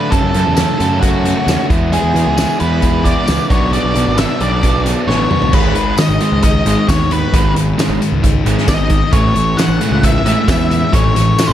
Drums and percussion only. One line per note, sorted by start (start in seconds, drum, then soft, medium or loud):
0.12 kick medium
0.12 closed hi-hat medium
0.34 closed hi-hat medium
0.57 snare medium
0.57 closed hi-hat medium
0.57 tambourine loud
0.80 closed hi-hat medium
1.03 kick medium
1.03 closed hi-hat medium
1.25 closed hi-hat medium
1.48 snare medium
1.48 closed hi-hat medium
1.48 tambourine loud
1.70 kick loud
1.70 closed hi-hat medium
1.93 closed hi-hat medium
2.16 closed hi-hat soft
2.38 snare loud
2.38 closed hi-hat medium
2.38 tambourine medium
2.60 closed hi-hat soft
2.82 kick medium
2.82 closed hi-hat medium
3.05 kick medium
3.05 closed hi-hat medium
3.28 snare loud
3.28 closed hi-hat medium
3.28 tambourine loud
3.50 kick loud
3.50 closed hi-hat medium
3.73 closed hi-hat medium
3.96 closed hi-hat medium
4.18 snare loud
4.18 closed hi-hat medium
4.18 tambourine medium
4.41 closed hi-hat medium
4.63 kick medium
4.63 closed hi-hat medium
4.86 closed hi-hat medium
5.10 snare soft
5.31 mid tom medium
5.42 floor tom medium
5.53 kick loud
5.53 crash loud
5.75 closed hi-hat medium
5.98 snare loud
5.98 closed hi-hat medium
5.98 tambourine loud
6.21 closed hi-hat medium
6.43 kick medium
6.43 closed hi-hat medium
6.66 closed hi-hat medium
6.89 kick medium
6.89 snare loud
6.89 closed hi-hat medium
6.89 tambourine loud
7.11 closed hi-hat medium
7.34 kick loud
7.34 closed hi-hat medium
7.56 closed hi-hat medium
7.79 snare loud
7.79 closed hi-hat medium
7.79 tambourine loud
8.02 closed hi-hat medium
8.24 kick medium
8.24 closed hi-hat medium
8.46 closed hi-hat medium
8.58 snare soft
8.68 kick medium
8.68 snare loud
8.68 closed hi-hat loud
8.68 tambourine loud
8.90 kick medium
8.90 closed hi-hat medium
9.13 kick loud
9.13 closed hi-hat medium
9.36 closed hi-hat medium
9.59 snare loud
9.59 closed hi-hat medium
9.59 tambourine loud
9.81 closed hi-hat medium
10.03 kick medium
10.03 closed hi-hat medium
10.26 closed hi-hat medium
10.48 kick medium
10.48 snare loud
10.48 closed hi-hat medium
10.48 tambourine loud
10.71 closed hi-hat medium
10.93 kick loud
10.93 closed hi-hat medium
11.16 closed hi-hat medium
11.39 snare loud
11.39 closed hi-hat medium
11.39 tambourine loud